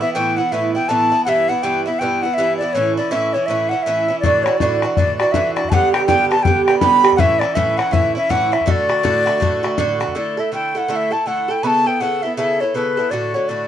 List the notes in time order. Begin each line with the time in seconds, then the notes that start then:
0.01 E3 B3 E4 E5
0.14 A2 E3 B3 E4 G5
0.37 E3 B3 E4 F#5
0.52 A2 E3 B3 E4 E5
0.75 E3 B3 E4 G5
0.89 A2 E3 B3 E4 A5
1.12 E3 B3 E4
1.25 G2 E3 B3 E4 F#5
1.29 E5
1.49 E3 B3 E4 F#5
1.63 G2 E3 B3 E4 G5
1.86 E3 B3 E4 E5
1.99 G2 E3 B3 G5
2.03 E4
2.22 B3 E4 F#5
2.26 E3
2.34 G2 E5
2.38 E3 B3 E4
2.57 E4 D5
2.62 E3 B3
2.73 A2 E3 C#4 E4 C#5
2.97 E3 C#4 E4 D5
3.11 A2 E3 C#4 E4 E5
3.33 E3 C#4 E4 C#5
3.46 A2 E3 E5
3.50 C#4 E4
3.69 C#4 E4 F#5
3.74 E3
3.83 A2 E5
3.87 E3 C#4 E4
4.08 E3 C#4 E4
4.20 A2 D5, bodhran
4.24 E3 D4 F#4
4.43 D4 F#4 C#5, bodhran
4.48 E3
4.57 A2 D5, bodhran
4.62 E3 D4 F#4
4.82 E3 D4 F#4, bodhran
4.95 A2 E3 D5, bodhran
4.99 D4 F#4
5.08 bodhran
5.18 F#4 D5, bodhran
5.22 E3 D4
5.32 A2 E3 D4 E5, bodhran
5.36 F#4
5.54 D4 F#4 D5, bodhran
5.59 E3
5.64 bodhran
5.69 G2 D3 B3 G4 F#5 A5, bodhran
5.92 D3 B3 G4 G5, bodhran
6.06 G2 D3 B3 G4 G5, bodhran
6.30 D3 B3 G4 A5, bodhran
6.43 G2 D3 G5, bodhran
6.47 B3 G4
6.57 bodhran
6.65 B3 G4 G5, bodhran
6.70 D3
6.79 G2 D3 B3 B5, bodhran
6.83 G4
7.04 D3 B3 G4, bodhran
7.12 F#5, bodhran
7.18 A2 E3 C#4 E4 E5, bodhran
7.39 C#4 E4 D5, bodhran
7.44 E3
7.55 A2 E3 C#4 E4 E5, bodhran
7.77 E3 C#4 E4 F#5, bodhran
7.91 A2 E3 C#4 E4 E5, bodhran
8.05 bodhran
8.15 E3 C#4 E4 E5
8.29 A2 E3 C#4 E4 F#5, bodhran
8.52 E3 C#4 E4 E5, bodhran
8.61 bodhran
8.66 A2 D3 A3 F#4 E5, bodhran
8.71 D5
8.89 D3 A3 F#4, bodhran
9.03 A2 D3 A3 F#4, bodhran
9.26 D3 A3 F#4, bodhran
9.40 A2 D3 A3 F#4, bodhran
9.63 D3 A3 F#4, bodhran
9.78 A2 D3 A3 F#4, bodhran
10.00 D3 A3 F#4, bodhran
10.08 bodhran
10.15 D3 A3 E4 A4 D5
10.37 A3 E4 A4 E5
10.52 D3 A3 E4 A4 G5
10.75 A3 E4 A4 F#5
10.88 D3 A3 E4 A4 F#5
10.96 E5
11.11 A3 E4 A4 A5
11.26 D3 A3 E4 A4 F#5
11.48 A3 E4 A4 G5
11.63 C#3 B3 E4 A4 A5 B5
11.86 B3 E4 A4 G5
12.00 C#3 B3 E4 A4 F#5
12.22 B3 E4 A4 E5
12.37 C#3 B3 E4 A4 E5
12.61 B3 E4 A4 C#5
12.74 C#3 B3 E4 A4 B4
12.97 B3 E4 A4
13.11 A2 D3 A3 F#4 D5
13.34 D3 A3 F#4 C#5
13.48 A2 D3 A3 F#4 D5